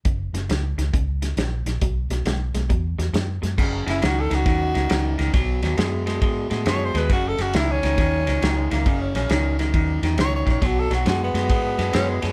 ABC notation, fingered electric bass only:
X:1
M:4/4
L:1/8
Q:"Swing" 1/4=136
K:F#mix
V:1 name="Fingered electric bass" clef=bass
F,,, F,,, C,, C,, C,,2 A,,, A,,, | B,,, B,,, B,,, B,,, E,, E,, F,, F,, | F,,, F,,, C,, C,, D,, C,, C,, C,, | B,,, D,, F,,2 G,, =A,, F,, D,, |
F,,, F,,, C,, C,, D,, C,, C,, C,, | F,,, A,,, C,,2 D,, E,, C,, A,,, | B,,, B,,, F,, F,, G,, F,, F,, F,, |]